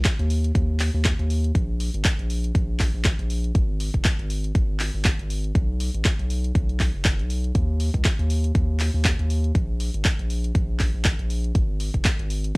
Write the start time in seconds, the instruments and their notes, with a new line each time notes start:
0.05 kick, clap, closed hi-hat
0.19 analog synth bass D#2, closed hi-hat
0.30 open hi-hat
0.44 closed hi-hat
0.55 analog synth bass D#2, kick, closed hi-hat
0.80 clap, open hi-hat
0.94 analog synth bass D#2
1.05 kick, clap, closed hi-hat
1.19 analog synth bass D#2, closed hi-hat
1.30 open hi-hat
1.44 closed hi-hat
1.55 analog synth bass A#1, kick, closed hi-hat
1.80 open hi-hat
1.94 analog synth bass G#1, closed hi-hat
2.05 kick, clap, closed hi-hat
2.19 analog synth bass A#1, closed hi-hat
2.30 open hi-hat
2.44 closed hi-hat
2.55 analog synth bass A#1, kick, closed hi-hat
2.80 kick, clap, open hi-hat
2.94 analog synth bass A#1
3.05 kick, clap, closed hi-hat
3.19 analog synth bass A#1, closed hi-hat
3.30 open hi-hat
3.44 closed hi-hat
3.55 analog synth bass G#1, kick, closed hi-hat
3.80 open hi-hat
3.94 analog synth bass F#1, kick, closed hi-hat
4.05 kick, clap, closed hi-hat
4.19 analog synth bass G#1, closed hi-hat
4.30 open hi-hat
4.44 closed hi-hat
4.55 analog synth bass G#1, kick, closed hi-hat
4.80 clap, open hi-hat
4.94 analog synth bass G#1
5.05 kick, clap, closed hi-hat
5.19 analog synth bass G#1, closed hi-hat
5.30 open hi-hat
5.44 closed hi-hat
5.55 analog synth bass B1, kick, closed hi-hat
5.80 open hi-hat
5.94 analog synth bass A1, closed hi-hat
6.05 kick, clap, closed hi-hat
6.19 analog synth bass B1, closed hi-hat
6.30 open hi-hat
6.44 closed hi-hat
6.55 analog synth bass B1, kick, closed hi-hat
6.69 closed hi-hat
6.80 kick, clap, open hi-hat
6.94 analog synth bass F#1
7.05 kick, clap, closed hi-hat
7.19 analog synth bass B1, closed hi-hat
7.30 open hi-hat
7.44 closed hi-hat
7.55 analog synth bass D#2, kick, closed hi-hat
7.80 open hi-hat
7.94 analog synth bass C#2, kick, closed hi-hat
8.05 kick, clap, closed hi-hat
8.19 analog synth bass D#2, closed hi-hat
8.30 open hi-hat
8.44 closed hi-hat
8.55 analog synth bass D#2, kick, closed hi-hat
8.80 clap, open hi-hat
8.94 analog synth bass D#2
9.05 kick, clap, closed hi-hat
9.19 analog synth bass D#2, closed hi-hat
9.30 open hi-hat
9.44 closed hi-hat
9.55 analog synth bass A#1, kick, closed hi-hat
9.80 open hi-hat
9.94 analog synth bass G#1, closed hi-hat
10.05 kick, clap, closed hi-hat
10.19 analog synth bass A#1, closed hi-hat
10.30 open hi-hat
10.44 closed hi-hat
10.55 analog synth bass A#1, kick, closed hi-hat
10.80 kick, clap, open hi-hat
10.94 analog synth bass A#1
11.05 kick, clap, closed hi-hat
11.19 analog synth bass A#1, closed hi-hat
11.30 open hi-hat
11.44 closed hi-hat
11.55 analog synth bass G#1, kick, closed hi-hat
11.80 open hi-hat
11.94 analog synth bass F#1, kick, closed hi-hat
12.05 kick, clap, closed hi-hat
12.19 analog synth bass G#1, closed hi-hat
12.30 open hi-hat
12.44 closed hi-hat